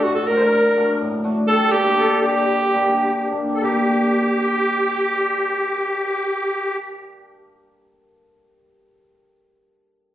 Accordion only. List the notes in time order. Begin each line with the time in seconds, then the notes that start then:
0.05 F#4
0.29 A#4
0.36 C5
0.42 A#4
0.76 A#4
1.47 A4
1.72 G4
1.97 A4
2.22 G4
3.54 A4
3.62 G4